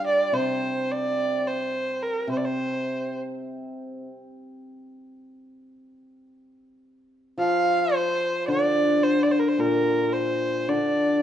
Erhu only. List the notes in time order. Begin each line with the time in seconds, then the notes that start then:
0.07 D5
0.34 C5
0.91 D5
1.47 C5
2.03 A#4
2.31 C5
2.37 D5
2.45 C5
7.40 F5
7.94 C5
8.48 D5
9.03 C5
9.23 D5
9.31 C5
9.39 A#4
9.48 C5
9.60 A#4
10.13 C5
10.69 D5